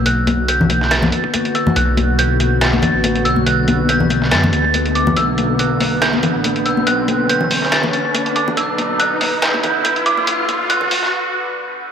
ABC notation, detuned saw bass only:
X:1
M:4/4
L:1/16
Q:"Swing 16ths" 1/4=141
K:Bm
V:1 name="Detuned saw bass" clef=bass
B,,,8- B,,,2 z6 | B,,,8- B,,,2 z A,,,3 B,,,2 | B,,,8 F,,2 D,,6 | B,,,8- B,,,2 z A,,,3 B,,,2 |
B,,,8- B,,,2 z6 | B,,,8- B,,,2 z A,,,3 B,,,2 | B,,,8 z8 |]